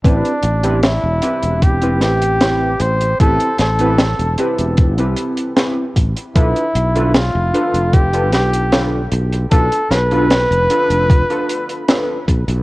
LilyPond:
<<
  \new Staff \with { instrumentName = "Flugelhorn" } { \time 4/4 \key a \minor \tempo 4 = 76 d'4 e'4 g'8 g'4 c''8 | a'8 a'4. r2 | e'4 f'4 g'8 g'4 r8 | a'8 b'2. r8 | }
  \new Staff \with { instrumentName = "Synth keys" } { \time 4/4 \key a \minor <c' e' g' b'>16 r8 <c' e' g' b'>16 r8 <c' e' g' b'>8. <c' e' g' b'>8. <c' e' g' b'>16 r8. | <c' e' g' b'>16 r8 <c' e' g' b'>16 r8 <c' e' g' b'>8. <c' e' g' b'>8. <c' e' g' b'>16 r8. | <d' f' a' b'>16 r8 <d' f' a' b'>16 r8 <d' f' a' b'>8. <d' f' a' b'>8. <d' f' a' b'>16 r8. | <d' f' a' b'>16 r8 <d' f' a' b'>16 r8 <d' f' a' b'>8. <d' f' a' b'>8. <d' f' a' b'>16 r8. | }
  \new Staff \with { instrumentName = "Fretless electric bass" } { \clef bass \time 4/4 \key a \minor a,,16 r16 a,,8. e,,16 r16 e,,8. a,,4 a,,8 | a,,16 r16 a,,8. e,,16 r16 e,,8 c,16 r4 a,,16 r16 | b,,16 r16 b,,8. f,,16 r16 f,,8. b,,4 b,,8 | b,,16 r16 b,,8. f,,16 r16 f,,8 r4 r16 b,,16 b,,16 | }
  \new DrumStaff \with { instrumentName = "Drums" } \drummode { \time 4/4 <hh bd>16 hh16 hh16 hh16 <hh sn>8 hh16 hh16 <hh bd>16 hh16 <hh sn>16 hh16 <hh sn>8 hh16 hh16 | <hh bd>16 hh16 <hh sn>16 hh16 <hh sn>16 hh16 hh16 hh16 <hh bd>16 hh16 hh16 hh16 <hh sn>8 <hh bd>16 hh16 | <hh bd>16 hh16 hh16 hh16 <hh sn>8 hh16 hh16 <hh bd>16 hh16 <hh sn>16 hh16 <hh sn>8 hh16 hh16 | <hh bd>16 hh16 <hh sn>16 hh16 <hh sn>16 hh16 hh16 hh16 <hh bd>16 hh16 hh16 hh16 <hh sn>8 <hh bd>16 hh16 | }
>>